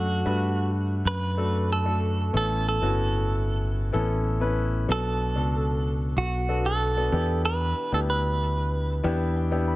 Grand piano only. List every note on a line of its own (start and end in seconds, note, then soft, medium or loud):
0.00 0.12 A3 medium
0.00 0.13 D4 medium
0.00 0.13 F#4 medium
0.00 0.13 A4 medium
0.25 1.06 A3 medium
0.25 1.06 D4 medium
0.25 1.06 F#4 medium
0.25 1.07 B4 medium
1.37 1.72 A3 medium
1.37 1.72 D4 medium
1.37 1.72 F#4 medium
1.37 1.72 A4 medium
1.85 2.20 A3 medium
1.85 2.20 D4 medium
1.85 2.20 F#4 medium
1.85 2.20 A4 medium
2.33 3.25 A2 medium
2.33 2.68 B3 medium
2.33 2.68 C#4 medium
2.33 2.68 E4 medium
2.33 2.68 A4 medium
2.81 3.62 B3 medium
2.81 3.62 C#4 medium
2.81 3.62 E4 medium
2.81 3.62 F#4 medium
3.93 4.27 B3 medium
3.93 4.28 C#4 medium
3.93 4.28 E4 medium
3.93 4.28 A4 loud
4.40 4.75 B3 medium
4.40 4.75 C#4 medium
4.40 4.76 E4 medium
4.40 4.76 B4 medium
4.88 5.81 B2 medium
4.88 5.23 B3 medium
4.88 5.23 D4 medium
4.88 5.23 F#4 medium
4.88 5.23 A4 medium
5.35 6.17 B3 medium
5.35 6.17 D4 medium
5.35 6.17 F#4 medium
5.35 6.17 A4 medium
6.48 6.83 B3 medium
6.48 6.83 D4 medium
6.48 6.83 F#4 medium
6.48 6.83 A4 medium
6.97 7.11 B3 medium
6.97 7.11 D4 medium
6.97 7.13 F#4 medium
6.97 7.13 A4 medium
7.13 8.05 E3 medium
7.13 7.76 B3 medium
7.13 7.77 D4 medium
7.13 7.77 E4 medium
7.13 7.77 G4 medium
7.92 8.73 B3 medium
7.92 8.73 D4 medium
7.92 8.73 E4 medium
7.92 8.73 G4 medium
9.04 9.38 B3 medium
9.04 9.39 D4 medium
9.04 9.39 E4 medium
9.04 9.39 G4 loud
9.04 9.34 E5 medium
9.36 9.66 G5 medium
9.51 9.76 B3 medium
9.51 9.76 D4 medium
9.51 9.76 E4 medium
9.51 9.76 G4 medium
9.68 9.76 B5 medium